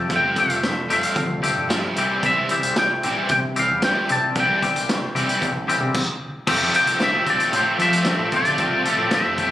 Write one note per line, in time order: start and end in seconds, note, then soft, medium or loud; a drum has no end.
0.00 0.20 F3 medium
0.00 5.92 G3 medium
0.00 0.20 A3 medium
0.00 0.19 C4 medium
0.00 1.94 F4 medium
0.00 0.19 G4 medium
0.00 1.94 A4 medium
0.00 0.14 A5 medium
0.10 0.41 F1 medium
0.10 0.35 F2 medium
0.10 0.36 C3 medium
0.10 0.36 F3 loud
0.10 kick loud
0.10 closed hi-hat medium
0.16 0.40 G5 loud
0.36 0.61 F2 medium
0.36 0.62 C3 medium
0.36 0.73 F3 medium
0.36 0.72 A3 medium
0.36 0.72 C4 medium
0.36 0.72 G4 medium
0.36 0.92 E5 medium
0.36 kick medium
0.36 closed hi-hat medium
0.50 0.71 F1 medium
0.50 closed hi-hat medium
0.63 0.87 F2 medium
0.63 0.88 C3 medium
0.63 snare loud
0.63 closed hi-hat medium
0.89 1.15 F2 medium
0.89 1.00 F2 medium
0.89 1.15 C3 loud
0.89 1.15 F3 loud
0.89 1.26 A3 medium
0.89 1.25 C4 medium
0.89 1.25 G4 medium
0.89 closed hi-hat medium
0.93 1.94 F5 medium
1.03 closed hi-hat medium
1.16 1.47 D2 medium
1.16 1.41 F2 medium
1.16 1.41 C3 medium
1.16 kick loud
1.16 closed hi-hat medium
1.42 1.67 F2 medium
1.42 1.67 C3 medium
1.42 1.79 F3 medium
1.42 1.78 A3 medium
1.42 1.78 C4 medium
1.42 1.78 G4 medium
1.42 closed hi-hat medium
1.56 1.87 G2 medium
1.69 1.95 F2 medium
1.69 1.94 C3 medium
1.69 1.95 F3 medium
1.69 snare loud
1.69 closed hi-hat medium
1.95 2.17 C2 medium
1.95 2.20 C3 medium
1.95 2.21 E3 medium
1.95 2.21 G3 medium
1.95 2.32 C4 medium
1.95 5.92 E4 medium
1.95 2.32 G4 medium
1.95 4.08 C5 medium
1.95 closed hi-hat medium
2.22 2.43 C2 loud
2.22 2.48 C3 medium
2.22 2.48 E3 medium
2.22 2.48 G3 loud
2.22 kick loud
2.22 closed hi-hat medium
2.26 2.74 E5 loud
2.49 2.74 C3 medium
2.49 2.74 E3 medium
2.49 2.86 G3 medium
2.49 2.85 C4 medium
2.49 2.85 G4 medium
2.49 closed hi-hat medium
2.63 2.84 C2 medium
2.63 closed hi-hat medium
2.76 3.00 C3 medium
2.76 3.01 E3 medium
2.76 3.27 G5 medium
2.76 snare loud
2.76 closed hi-hat medium
3.03 3.14 A1 medium
3.03 3.29 C3 medium
3.03 3.29 E3 loud
3.03 3.29 G3 medium
3.03 3.38 C4 medium
3.03 3.38 G4 medium
3.03 closed hi-hat medium
3.29 3.60 C3 medium
3.29 3.54 C3 medium
3.29 3.54 E3 loud
3.29 3.38 G5 medium
3.29 kick loud
3.29 closed hi-hat medium
3.56 3.81 C3 medium
3.56 3.81 E3 medium
3.56 3.91 G3 medium
3.56 3.91 C4 medium
3.56 3.91 G4 medium
3.56 3.84 F5 medium
3.56 closed hi-hat medium
3.71 3.91 E2 medium
3.82 4.08 C3 medium
3.82 4.08 E3 medium
3.82 4.08 G3 medium
3.82 4.11 G5 medium
3.82 snare loud
3.82 closed hi-hat medium
4.09 4.30 C3 medium
4.09 4.34 C3 medium
4.09 4.34 E3 medium
4.09 4.44 G3 medium
4.09 4.44 C4 medium
4.09 4.44 G4 medium
4.09 5.94 D5 medium
4.09 4.38 A5 medium
4.09 closed hi-hat medium
4.35 4.66 C2 medium
4.35 4.61 C3 medium
4.35 4.61 E3 medium
4.35 4.61 G3 loud
4.35 kick loud
4.35 closed hi-hat medium
4.40 5.93 G5 loud
4.62 4.87 C3 medium
4.62 4.87 E3 medium
4.62 4.97 G3 medium
4.62 4.97 C4 medium
4.62 4.97 G4 medium
4.62 kick medium
4.62 closed hi-hat medium
4.75 4.95 C2 medium
4.75 closed hi-hat medium
4.89 5.13 C3 medium
4.89 5.13 E3 medium
4.89 snare loud
4.89 closed hi-hat medium
5.15 5.25 C3 medium
5.15 5.41 C3 medium
5.15 5.41 E3 loud
5.15 5.41 G3 loud
5.15 5.50 C4 medium
5.15 5.50 G4 medium
5.15 closed hi-hat medium
5.29 closed hi-hat medium
5.42 5.72 A1 medium
5.42 5.66 C3 medium
5.42 5.66 E3 medium
5.42 kick loud
5.42 closed hi-hat medium
5.67 5.92 C3 medium
5.67 5.92 E3 medium
5.67 5.95 G3 medium
5.67 5.95 C4 medium
5.67 5.95 G4 medium
5.67 closed hi-hat medium
5.80 5.91 C3 loud
5.94 kick loud
5.94 crash loud
6.47 6.68 F2 medium
6.47 6.74 F2 medium
6.47 6.74 C3 medium
6.47 6.75 F3 medium
6.47 6.76 A3 loud
6.47 6.76 C4 medium
6.47 9.51 F4 medium
6.47 6.75 F4 loud
6.47 6.75 G4 loud
6.47 9.51 A4 medium
6.47 8.58 G5 medium
6.47 kick loud
6.47 crash loud
6.74 7.01 F2 medium
6.74 7.01 C3 medium
6.74 7.01 F3 medium
6.74 7.01 A3 medium
6.74 7.02 C4 medium
6.74 7.02 F4 medium
6.74 7.01 G4 medium
6.74 7.02 G5 loud
6.74 closed hi-hat medium
6.85 6.96 C2 medium
6.85 closed hi-hat medium
7.00 7.28 F2 medium
7.00 7.28 C3 medium
7.00 7.28 F3 medium
7.00 7.29 A3 medium
7.00 7.30 C4 loud
7.00 7.29 F4 medium
7.00 7.27 G4 medium
7.00 7.27 E5 loud
7.00 snare loud
7.00 closed hi-hat medium
7.13 7.34 C2 medium
7.26 7.52 F2 medium
7.26 7.52 C3 loud
7.26 7.53 F3 medium
7.26 7.53 A3 loud
7.26 7.53 G4 medium
7.26 7.56 D5 loud
7.26 kick medium
7.26 closed hi-hat medium
7.30 7.54 C4 medium
7.30 7.54 F4 medium
7.40 closed hi-hat medium
7.52 7.80 F2 loud
7.52 7.63 A2 medium
7.52 7.81 C3 loud
7.52 7.81 F3 loud
7.52 7.81 A3 loud
7.52 7.82 C4 loud
7.52 7.82 F4 loud
7.52 7.81 G4 loud
7.52 closed hi-hat medium
7.56 7.80 C5 medium
7.79 8.06 F2 medium
7.79 8.07 C3 medium
7.79 8.10 F3 medium
7.79 8.07 F3 medium
7.79 8.07 A3 medium
7.79 8.07 G4 loud
7.79 8.36 E5 medium
7.79 closed hi-hat medium
7.83 8.08 C4 medium
7.83 8.08 F4 loud
7.93 closed hi-hat medium
8.04 8.33 F2 medium
8.04 8.33 C3 medium
8.04 8.33 F3 loud
8.04 8.34 G4 medium
8.04 snare loud
8.04 closed hi-hat medium
8.08 8.34 A3 medium
8.08 8.35 C4 medium
8.08 8.34 F4 medium
8.19 8.40 A2 medium
8.32 8.59 F2 medium
8.32 8.59 C3 medium
8.32 8.60 F3 medium
8.32 8.60 A3 medium
8.32 8.61 C4 medium
8.32 8.61 F4 medium
8.32 8.61 G4 medium
8.32 kick medium
8.32 closed hi-hat medium
8.36 9.17 D5 loud
8.45 8.56 D2 medium
8.45 closed hi-hat medium
8.58 8.79 C2 loud
8.58 8.85 F2 medium
8.58 8.86 C3 loud
8.58 8.85 F3 medium
8.58 8.86 A3 loud
8.58 8.87 C4 loud
8.58 8.86 G4 loud
8.58 kick loud
8.58 closed hi-hat medium
8.62 8.87 F4 loud
8.62 9.51 A5 loud
8.85 9.10 F2 medium
8.85 9.10 C3 medium
8.85 9.11 F3 medium
8.85 9.11 A3 medium
8.85 9.12 C4 medium
8.85 9.11 F4 medium
8.85 9.13 G4 medium
8.85 closed hi-hat medium
8.97 9.08 A2 medium
9.11 9.37 F2 medium
9.11 9.37 C3 medium
9.11 9.38 F3 loud
9.11 9.38 A3 medium
9.11 9.39 C4 medium
9.11 9.39 F4 medium
9.11 9.39 G4 medium
9.11 9.51 E5 medium
9.11 snare loud
9.11 closed hi-hat medium
9.25 9.51 F2 medium
9.38 9.51 F2 medium
9.38 9.51 C3 medium
9.38 9.51 F3 medium
9.38 9.51 A3 medium
9.38 9.51 C4 medium
9.38 9.51 F4 medium
9.38 9.51 G4 loud
9.38 kick medium
9.38 closed hi-hat medium